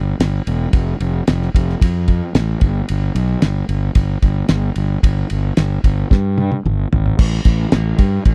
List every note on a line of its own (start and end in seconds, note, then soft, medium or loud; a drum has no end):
0.00 0.12 G1 medium
0.20 0.39 G1 medium
0.20 snare loud
0.20 ride loud
0.47 0.66 E1 medium
0.47 ride medium
0.73 0.93 F1 loud
0.73 kick loud
0.73 ride medium
1.00 1.20 F1 medium
1.00 ride medium
1.27 1.48 F1 medium
1.27 snare medium
1.27 ride medium
1.42 snare soft
1.55 1.74 F1 medium
1.55 kick medium
1.55 ride medium
1.70 snare soft
1.81 2.20 F2 medium
1.81 kick loud
1.81 ride loud
2.08 kick medium
2.08 ride medium
2.35 2.54 A1 medium
2.35 snare loud
2.35 ride medium
2.61 2.81 G1 medium
2.61 kick loud
2.61 ride medium
2.89 3.09 G1 loud
2.89 ride medium
3.15 3.34 B1 medium
3.15 ride medium
3.42 3.62 G1 medium
3.42 snare loud
3.42 ride medium
3.69 3.88 G1 medium
3.69 ride medium
3.95 4.15 G1 medium
3.95 kick loud
3.95 ride medium
4.22 4.42 G1 medium
4.22 kick medium
4.22 ride medium
4.49 4.69 G1 medium
4.49 snare loud
4.49 ride medium
4.76 4.96 G1 medium
4.76 ride medium
5.03 5.22 G1 medium
5.03 kick loud
5.03 ride loud
5.30 5.50 G1 medium
5.30 ride medium
5.57 5.77 G1 medium
5.57 snare loud
5.57 ride medium
5.84 6.03 G1 medium
5.84 kick medium
5.84 ride medium
6.11 6.49 G2 loud
6.11 kick loud
6.11 snare medium
6.38 high tom medium
6.52 high tom medium
6.65 6.84 G1 loud
6.65 mid tom medium
6.92 7.11 G#1 medium
6.92 floor tom loud
7.06 floor tom medium
7.19 7.38 A1 loud
7.19 kick loud
7.19 crash loud
7.45 7.65 A1 medium
7.45 kick loud
7.45 ride medium
7.72 7.92 A1 medium
7.72 snare loud
7.72 ride loud
7.98 8.18 G2 medium
7.98 kick loud
7.98 ride medium
8.25 8.35 A1 loud
8.25 kick medium
8.25 ride medium